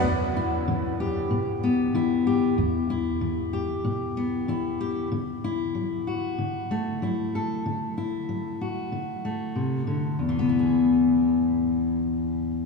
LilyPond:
<<
  \new Staff \with { instrumentName = "Steel-string acoustic guitar" } { \time 4/4 \key e \minor \tempo 4 = 95 << { r8 e'4 g'4 b8 e'8 g'8 | r8 e'4 g'4 b8 e'8 g'8 | r8 e'4 fis'4 a8 e'8 a'8 | r8 e'4 fis'4 a4. |
<e b e' gis'>1 | } \\ { e,4 e4 b,4 e4 | e,4 e4 b,4 e4 | d4 fis4 d4 fis4 | d4 fis4 d4 c8 d8 |
e,1 | } >> }
  \new Staff \with { instrumentName = "Upright bass" } { \clef bass \time 4/4 \key e \minor e,1 | e,1 | r1 | r1 |
r1 | }
>>